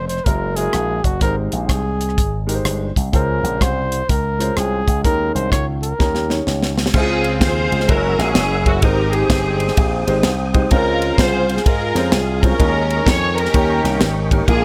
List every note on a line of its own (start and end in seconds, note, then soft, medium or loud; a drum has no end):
0.00 0.19 F1 medium
0.08 0.26 C5 medium
0.08 closed hi-hat medium
0.17 cross-stick soft
0.25 0.67 F#1 medium
0.25 0.51 G#3 medium
0.25 0.51 E4 medium
0.25 0.51 F#4 medium
0.25 0.57 A#4 medium
0.25 0.51 A#4 medium
0.25 kick loud
0.25 closed hi-hat medium
0.56 0.95 G#3 medium
0.56 0.95 E4 soft
0.56 0.95 F#4 medium
0.56 1.06 G#4 medium
0.56 0.95 A#4 medium
0.56 closed hi-hat medium
0.73 1.00 A#1 medium
0.73 cross-stick medium
0.73 closed hi-hat medium
1.04 1.19 F#1 medium
1.04 1.22 F#4 medium
1.04 kick medium
1.04 closed hi-hat medium
1.21 1.47 G#1 medium
1.21 1.97 G#2 soft
1.21 1.77 G#3 medium
1.21 1.77 D#4 medium
1.21 1.77 G4 medium
1.21 1.36 A#4 medium
1.21 1.78 C5 medium
1.21 kick medium
1.21 closed hi-hat medium
1.52 1.67 A#1 medium
1.52 2.45 G#4 medium
1.52 closed hi-hat medium
1.69 2.20 C2 medium
1.69 kick medium
1.69 cross-stick loud
1.69 closed hi-hat medium
2.01 closed hi-hat medium
2.09 cross-stick soft
2.18 2.59 G#1 medium
2.18 kick loud
2.18 closed hi-hat medium
2.47 2.85 G#3 medium
2.47 2.86 D#4 medium
2.47 2.86 G4 medium
2.47 2.52 A#4 medium
2.47 closed hi-hat medium
2.54 2.89 C5 medium
2.64 2.91 G1 medium
2.64 cross-stick loud
2.64 closed hi-hat medium
2.96 3.11 C2 medium
2.96 kick medium
2.96 closed hi-hat medium
3.13 3.39 C#2 medium
3.13 3.87 C#3 medium
3.13 3.68 G#3 medium
3.13 3.68 C#4 medium
3.13 3.68 F4 medium
3.13 3.64 A#4 medium
3.13 3.69 C5 medium
3.13 kick medium
3.13 closed hi-hat medium
3.43 3.58 A#1 medium
3.43 closed hi-hat medium
3.61 4.01 C2 medium
3.61 4.11 C5 medium
3.61 kick medium
3.61 cross-stick loud
3.61 closed hi-hat medium
3.92 closed hi-hat medium
4.09 4.50 C#2 medium
4.09 4.58 A#4 medium
4.09 kick medium
4.09 closed hi-hat medium
4.39 4.77 G#3 medium
4.39 4.77 C#4 soft
4.39 4.77 F4 medium
4.39 4.78 C5 medium
4.39 cross-stick soft
4.39 closed hi-hat medium
4.57 4.83 C2 medium
4.57 5.04 G#4 medium
4.57 cross-stick medium
4.57 closed hi-hat medium
4.88 5.02 C#2 medium
4.88 kick medium
4.88 closed hi-hat medium
5.03 5.30 D#2 medium
5.03 5.78 D#3 medium
5.03 5.58 G#3 medium
5.03 5.59 C#4 medium
5.03 5.59 D#4 medium
5.03 5.33 A#4 medium
5.03 5.59 A#4 medium
5.03 kick medium
5.03 closed hi-hat medium
5.35 5.49 C2 medium
5.35 5.51 C5 medium
5.35 closed hi-hat medium
5.52 5.92 C#2 medium
5.52 5.66 C#5 medium
5.52 kick medium
5.52 cross-stick loud
5.52 closed hi-hat medium
5.82 6.43 A#4 medium
5.82 closed hi-hat medium
5.99 6.40 D#2 medium
5.99 6.73 D#3 medium
5.99 6.23 G3 medium
5.99 6.23 C#4 medium
5.99 6.24 D#4 medium
5.99 6.24 A#4 medium
5.99 kick loud
5.99 snare medium
6.15 snare soft
6.29 6.33 F#3 soft
6.29 6.67 C#4 medium
6.29 6.67 D#4 soft
6.29 6.68 C#5 medium
6.29 snare medium
6.34 6.70 G3 medium
6.47 6.87 C#2 medium
6.47 snare medium
6.63 snare medium
6.78 snare medium
6.86 snare medium
6.94 7.41 C#2 loud
6.94 7.68 C#3 medium
6.94 7.48 G#3 medium
6.94 7.49 C4 medium
6.94 7.88 C4 medium
6.94 7.86 C4 medium
6.94 7.02 E4 medium
6.94 7.41 F4 medium
6.94 7.38 G#4 loud
6.94 7.49 C5 medium
6.94 7.88 F5 medium
6.94 kick loud
6.94 crash medium
7.01 7.52 F4 medium
7.24 ride medium
7.41 7.67 D#2 medium
7.41 7.86 F4 medium
7.41 7.86 G#4 medium
7.41 7.89 C5 loud
7.41 kick loud
7.41 snare loud
7.41 ride medium
7.72 7.86 C#2 medium
7.72 ride medium
7.80 snare soft
7.88 8.15 F#1 loud
7.88 8.12 G#3 medium
7.88 8.13 C#4 medium
7.88 8.18 C#4 medium
7.88 8.13 E4 medium
7.88 8.18 E4 medium
7.88 8.13 F#4 medium
7.88 8.19 A#4 loud
7.88 8.83 A#4 medium
7.88 8.13 A#4 medium
7.88 8.83 F#5 medium
7.88 8.82 E6 medium
7.88 kick loud
7.88 ride medium
8.18 8.33 A#1 loud
8.18 8.39 G#3 medium
8.18 8.39 C#4 medium
8.18 8.79 C#4 medium
8.18 8.39 E4 medium
8.18 8.79 E4 medium
8.18 8.40 F#4 medium
8.18 8.66 G#4 loud
8.18 8.40 A#4 medium
8.18 snare soft
8.18 ride medium
8.35 8.83 F#1 loud
8.35 snare loud
8.35 ride medium
8.65 8.75 G#3 medium
8.65 8.75 C#4 medium
8.65 8.76 E4 medium
8.65 8.75 F#4 medium
8.65 8.84 F#4 medium
8.65 8.76 G#4 medium
8.65 kick medium
8.65 ride medium
8.82 9.23 G#1 loud
8.82 9.56 G#2 medium
8.82 9.37 G#3 medium
8.82 9.37 C4 medium
8.82 9.37 D#4 medium
8.82 9.12 D#4 medium
8.82 9.37 G4 medium
8.82 9.73 G4 medium
8.82 9.13 A#4 loud
8.82 9.38 C5 medium
8.82 10.70 C5 medium
8.82 10.70 G5 medium
8.82 10.70 D#6 medium
8.82 kick loud
8.82 ride medium
9.13 10.03 C4 medium
9.13 10.03 D#4 medium
9.13 10.08 G#4 loud
9.13 ride medium
9.30 9.70 G1 medium
9.30 kick loud
9.30 snare loud
9.30 ride medium
9.60 ride medium
9.68 snare soft
9.77 10.03 A#1 loud
9.77 kick loud
9.77 ride medium
10.07 10.22 G#1 medium
10.07 10.28 G#3 medium
10.07 10.28 C4 medium
10.07 10.28 D#4 medium
10.07 10.28 G4 medium
10.07 10.28 C5 loud
10.07 ride medium
10.23 10.64 C2 loud
10.23 snare loud
10.23 ride medium
10.54 10.63 G#3 medium
10.54 10.64 C4 medium
10.54 10.64 D#4 medium
10.54 10.64 G4 medium
10.54 10.64 C5 medium
10.54 kick loud
10.54 ride medium
10.71 11.11 C#2 loud
10.71 11.45 C#3 medium
10.71 11.26 G#3 medium
10.71 11.26 C4 medium
10.71 11.26 C#4 medium
10.71 11.18 F4 medium
10.71 11.26 F4 medium
10.71 12.58 G#4 medium
10.71 11.16 A#4 loud
10.71 11.26 C5 medium
10.71 12.58 F5 medium
10.71 kick medium
10.71 ride medium
11.02 ride medium
11.18 11.58 C2 loud
11.18 11.65 F4 medium
11.18 12.09 G#4 medium
11.18 11.66 C5 loud
11.18 kick loud
11.18 snare loud
11.18 ride medium
11.49 ride medium
11.57 snare soft
11.66 11.91 G#2 loud
11.66 12.56 F4 medium
11.66 12.10 A#4 loud
11.66 kick loud
11.66 ride medium
11.95 12.10 F2 medium
11.95 12.16 G#3 medium
11.95 12.16 C4 medium
11.95 12.16 C#4 medium
11.95 12.16 F4 medium
11.95 12.17 C5 medium
11.95 snare soft
11.95 ride medium
12.12 12.52 C2 medium
12.12 12.43 G#4 medium
12.12 snare loud
12.12 ride medium
12.42 12.52 G#3 medium
12.42 12.52 C4 medium
12.42 13.33 C#4 medium
12.42 12.52 C#4 medium
12.42 12.52 F4 medium
12.42 13.07 A#4 loud
12.42 12.52 C5 medium
12.42 kick loud
12.42 ride medium
12.59 12.99 D#2 loud
12.59 13.33 D#3 medium
12.59 13.13 G#3 medium
12.59 13.14 A#3 medium
12.59 13.14 C#4 medium
12.59 13.14 D#4 medium
12.59 14.64 A#4 medium
12.59 13.14 A#4 medium
12.59 14.46 D#5 medium
12.59 kick loud
12.59 ride medium
12.90 ride medium
13.06 13.47 F2 medium
13.06 13.36 C#5 loud
13.06 kick loud
13.06 snare loud
13.06 ride medium
13.37 14.27 C#4 medium
13.37 14.28 G4 medium
13.37 14.01 A#4 loud
13.37 ride medium
13.45 snare soft
13.53 13.80 D#2 loud
13.53 14.27 D#3 medium
13.53 13.77 G3 medium
13.53 13.77 A#3 medium
13.53 13.78 C#4 medium
13.53 13.78 D#4 medium
13.53 13.78 A#4 medium
13.53 14.47 G5 medium
13.53 14.47 C#6 medium
13.53 kick loud
13.53 ride medium
13.83 13.98 C2 medium
13.83 14.04 G3 medium
13.83 14.04 A#3 medium
13.83 14.04 C#4 medium
13.83 14.04 D#4 medium
13.83 14.04 A#4 medium
13.83 snare soft
13.83 ride medium
14.01 14.41 G#1 loud
14.01 snare loud
14.01 ride medium
14.31 14.41 G3 medium
14.31 14.41 A#3 medium
14.31 14.41 C#4 medium
14.31 14.41 D#4 medium
14.31 14.41 A#4 medium
14.31 kick medium
14.31 ride medium
14.47 14.64 A#1 loud
14.47 14.64 A#2 medium
14.47 14.64 G#3 medium
14.47 14.64 A#3 medium
14.47 14.64 D4 medium
14.47 14.64 F4 medium
14.47 14.64 G#4 loud
14.47 14.64 A#4 medium
14.47 14.64 F5 medium
14.47 14.64 G#5 medium
14.47 14.64 D6 medium
14.47 kick loud
14.47 ride medium